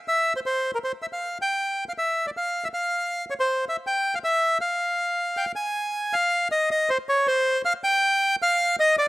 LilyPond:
\new Staff \with { instrumentName = "Bandoneon" } { \time 3/4 \key f \minor \tempo 4 = 159 e''8. c''16 c''8. bes'16 c''8 e''16 f''16~ | f''8 g''4~ g''16 f''16 e''8. d''16 | f''8. e''16 f''4. des''16 c''16~ | c''8 e''8 g''8. f''16 e''4 |
f''2 g''8 aes''8~ | aes''4 f''4 ees''8 ees''8 | c''8 des''8 c''4 f''8 g''8~ | g''4 f''4 ees''8 d''8 | }